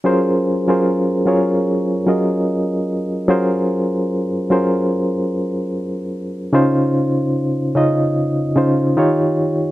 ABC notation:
X:1
M:4/4
L:1/16
Q:"Swing 16ths" 1/4=74
K:Gblyd
V:1 name="Reed electric piano"
[G,DFABc]2 z [G,DFABc]2 z [G,DFABd]3 z [G,DFABe]4- [G,DFABe] z | [G,DFABc]4- [G,DFABc] z [G,DFABc]6 z4 | [D,DEFc]4- [D,DEFc] z [D,DEFe]3 z [D,DEFc]2 [E,EF=Gd]3 z |]